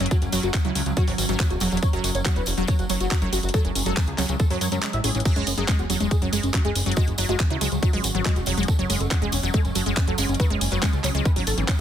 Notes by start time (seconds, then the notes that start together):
Already playing: F#3 C#4
0.00 F#1 F#3 C#4, closed hi-hat
0.06 closed hi-hat
0.11 F#3 F#4, kick, closed hi-hat, tambourine
0.22 F#1 F#3, closed hi-hat, tambourine
0.32 F#1 F#3, open hi-hat, tambourine
0.43 F#1 F#3 F#4, closed hi-hat, tambourine
0.53 F#3, kick, clap, closed hi-hat, tambourine
0.65 C#2 F#3 E4, closed hi-hat, tambourine
0.75 C#2 F#3, open hi-hat, tambourine
0.86 C#2 F#3, closed hi-hat, tambourine
0.97 F#3 F#4, kick, closed hi-hat, tambourine
1.07 G#1 F#3, open hi-hat, tambourine
1.18 G#1 F#4, open hi-hat, tambourine
1.29 G#1 F#3, closed hi-hat, tambourine
1.40 F#3, kick, clap, closed hi-hat, tambourine
1.50 E1 F#4, closed hi-hat, tambourine
1.60 E1 F#3, open hi-hat, tambourine
1.72 E1 F#3, closed hi-hat, tambourine
1.77 closed hi-hat
1.83 G#3 C#5, kick, closed hi-hat, tambourine
1.93 F#1 F#3 F#4, closed hi-hat, tambourine
2.04 F#1 F#3 F#4, open hi-hat, tambourine
2.15 F#1 C#5, closed hi-hat, tambourine
2.25 F#3 F#4, kick, clap, closed hi-hat, tambourine
2.36 E1 F#3 B4, closed hi-hat, tambourine
2.46 E1 F#4, open hi-hat, tambourine
2.58 E1 F#3 F#4, closed hi-hat, tambourine
2.67 F#3 C#5, kick, closed hi-hat, tambourine
2.79 F#1 F#4, closed hi-hat, tambourine
2.89 F#1 F#3 C#5, open hi-hat, tambourine
3.00 F#1 F#3 F#4, closed hi-hat, tambourine
3.11 F#4, kick, clap, closed hi-hat, tambourine
3.22 F#1 F#3 C#5, closed hi-hat, tambourine
3.33 F#1 F#3 F#4, open hi-hat, tambourine
3.43 F#1 F#4, closed hi-hat, tambourine
3.49 closed hi-hat
3.54 F#3 A4, kick, closed hi-hat, tambourine
3.65 F#1 F#3 C#4, closed hi-hat, tambourine
3.75 F#1 C#4, open hi-hat, tambourine
3.86 F#1 F#3 A4, closed hi-hat, tambourine
3.97 F#3 C#4, kick, clap, closed hi-hat, tambourine
4.07 C#2 G#4, closed hi-hat, tambourine
4.18 C#2 F#3 C#4, clap, open hi-hat, tambourine
4.29 C#2 F#3 C#4, closed hi-hat, tambourine
4.39 A4, kick, closed hi-hat, tambourine
4.50 F#2 F#3 C#4, open hi-hat, tambourine
4.61 F#2 C#5, open hi-hat, tambourine
4.72 F#2 F#3 C#4, closed hi-hat, tambourine
4.83 G#3 C#4, clap, closed hi-hat, tambourine
4.93 A1 E5, closed hi-hat, tambourine
5.04 A1 C#4 G#4, open hi-hat, tambourine
5.15 A1 E3 C#4, closed hi-hat, tambourine
5.20 closed hi-hat
5.25 F#3 C#4 G#4, kick, closed hi-hat, tambourine, crash
5.36 F#1 G#3 C#4, closed hi-hat, tambourine
5.47 F#1 C#4, open hi-hat, tambourine
5.57 F#1 F#3 G#4, closed hi-hat, tambourine
5.68 G#3 C#4, kick, clap, closed hi-hat, tambourine
5.79 E1 F#4, closed hi-hat, tambourine
5.90 E1 F#3 C#4, open hi-hat, tambourine
6.00 E1 G#3 C#4, closed hi-hat, tambourine
6.11 G#4, kick, closed hi-hat, tambourine
6.22 F#1 F#3 C#4, closed hi-hat, tambourine
6.33 F#1 G#3 G#4, open hi-hat, tambourine
6.43 F#1 C#4, closed hi-hat, tambourine
6.54 F#3 C#4, kick, clap, closed hi-hat, tambourine
6.65 F#1 G#3 G#4, closed hi-hat, tambourine
6.75 F#1 C#4, open hi-hat, tambourine
6.86 F#1 F#3 C#4, closed hi-hat, tambourine
6.92 closed hi-hat
6.96 G#3 F#4, kick, closed hi-hat, tambourine
7.07 F#1 F#3, closed hi-hat, tambourine
7.18 F#1 F#3, open hi-hat, tambourine
7.29 F#1 G#3 F#4, closed hi-hat, tambourine
7.40 F#3, kick, clap, closed hi-hat, tambourine
7.50 C#2 F#3 E4, closed hi-hat, tambourine
7.61 C#2 F#3 G#3, open hi-hat, tambourine
7.72 C#2 F#3, closed hi-hat, tambourine
7.83 F#3 F#4, kick, closed hi-hat, tambourine
7.93 G#1 F#3 G#3, open hi-hat, tambourine
8.04 G#1 F#4, open hi-hat, tambourine
8.15 G#1 F#3, closed hi-hat, tambourine
8.25 F#3 G#3, kick, clap, closed hi-hat, tambourine
8.36 E1 F#4, closed hi-hat, tambourine
8.46 E1 F#3, open hi-hat, tambourine
8.57 E1 F#3 G#3, closed hi-hat, tambourine
8.63 closed hi-hat
8.68 A4, kick, closed hi-hat, tambourine
8.79 F#1 F#3 C#4, closed hi-hat, tambourine
8.90 F#1 G#3 C#4, open hi-hat, tambourine
9.00 F#1 A4, closed hi-hat, tambourine
9.11 F#3 C#4, kick, clap, closed hi-hat, tambourine
9.22 E1 G#3 G#4, closed hi-hat, tambourine
9.32 E1 C#4, open hi-hat, tambourine
9.43 E1 F#3 C#4, closed hi-hat, tambourine
9.54 G#3 A4, kick, closed hi-hat, tambourine
9.65 F#1 C#4, closed hi-hat, tambourine
9.75 F#1 F#3 A4, open hi-hat, tambourine
9.86 F#1 G#3 C#4, closed hi-hat, tambourine
9.97 C#4, kick, clap, closed hi-hat, tambourine
10.07 F#1 F#3 A4, closed hi-hat, tambourine
10.18 F#1 G#3 C#4, open hi-hat, tambourine
10.29 F#1 C#4, closed hi-hat, tambourine
10.34 closed hi-hat
10.40 F#3 B4, kick, closed hi-hat, tambourine
10.50 F#1 G#3 C#4, closed hi-hat, tambourine
10.61 F#1 C#4, open hi-hat, tambourine
10.71 F#1 F#3 B4, closed hi-hat, tambourine
10.83 G#3 C#4, kick, clap, closed hi-hat, tambourine
10.93 C#2 A4, closed hi-hat, tambourine
11.04 C#2 F#3 C#4, clap, open hi-hat, tambourine
11.15 C#2 G#3 C#4, closed hi-hat, tambourine
11.25 B4, kick, closed hi-hat, tambourine
11.36 G#1 F#3 C#4, open hi-hat, tambourine
11.47 G#1 A4, open hi-hat, tambourine
11.58 G#1 E3 C#4, closed hi-hat, tambourine
11.68 E3 C#4, kick, clap, closed hi-hat, tambourine